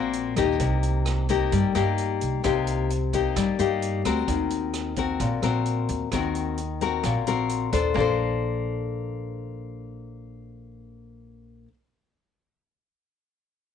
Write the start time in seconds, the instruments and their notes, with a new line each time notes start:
Already playing: upright bass A#1, nylon-string guitar A#2 A#3 C4 F#4
0.13 closed hi-hat
0.36 upright bass D#2, nylon-string guitar A#3 D#4 G4, kick, cross-stick, closed hi-hat
0.60 upright bass C2, nylon-string guitar C3, kick, closed hi-hat
0.83 closed hi-hat
1.06 cross-stick, closed hi-hat
1.29 nylon-string guitar A#3 D#4 G4, kick, closed hi-hat
1.52 upright bass G2, nylon-string guitar G3, kick, closed hi-hat
1.75 upright bass G2, nylon-string guitar A#3 D#4 G4, cross-stick, closed hi-hat
1.98 closed hi-hat
2.21 upright bass C2, closed hi-hat
2.44 upright bass C2, nylon-string guitar C3 A#3 D#4 G4, kick, cross-stick, closed hi-hat
2.67 closed hi-hat
2.90 closed hi-hat
3.13 nylon-string guitar A#3 D#4 G4, kick, closed hi-hat
3.36 upright bass G2, nylon-string guitar G3, kick, cross-stick, closed hi-hat
3.59 upright bass G2, nylon-string guitar A#3 D#4 G4, closed hi-hat
3.82 closed hi-hat
4.05 upright bass D2, nylon-string guitar C4 F#4 A#4, cross-stick, closed hi-hat
4.28 upright bass D#2, nylon-string guitar D#3, kick, closed hi-hat
4.50 closed hi-hat
4.74 cross-stick, closed hi-hat
4.96 nylon-string guitar C4 F#4 A#4, kick, closed hi-hat
5.20 upright bass A#1, nylon-string guitar A#2, kick, closed hi-hat
5.42 upright bass A#1, nylon-string guitar C4 F#4 A#4, cross-stick, closed hi-hat
5.66 closed hi-hat
5.89 upright bass D#2, closed hi-hat
6.12 upright bass D#2, nylon-string guitar D#3 C4 F#4 A#4, kick, cross-stick, closed hi-hat
6.35 closed hi-hat
6.58 closed hi-hat
6.81 nylon-string guitar C4 F#4 A#4, closed hi-hat
7.03 upright bass A#1, nylon-string guitar A#2, kick, cross-stick, closed hi-hat
7.27 upright bass A#1, nylon-string guitar C4 F#4 A#4, closed hi-hat
7.49 closed hi-hat
7.73 upright bass D#2, nylon-string guitar D4 A4 C5, kick, cross-stick, closed hi-hat
7.94 upright bass A#1, nylon-string guitar A#3 D4, kick, floor tom
7.98 nylon-string guitar A4 C5